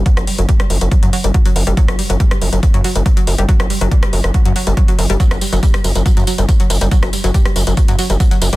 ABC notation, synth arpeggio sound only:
X:1
M:4/4
L:1/16
Q:1/4=140
K:Glyd
V:1 name="Synth arpeggio sound" clef=bass
F, F, G, F, G, G, F, F, F, F, F, G, F, F, F, G, | F, F, G, F, G, G, F, F, F, F, F, G, F, F, F, G, | F, F, G, F, G, G, F, F, F, F, F, G, F, F, F, G, | F, F, G, F, G, G, F, F, F, F, F, G, F, F, F, G, |
F, F, G, F, G, G, F, F, F, F, F, G, F, F, F, G, |]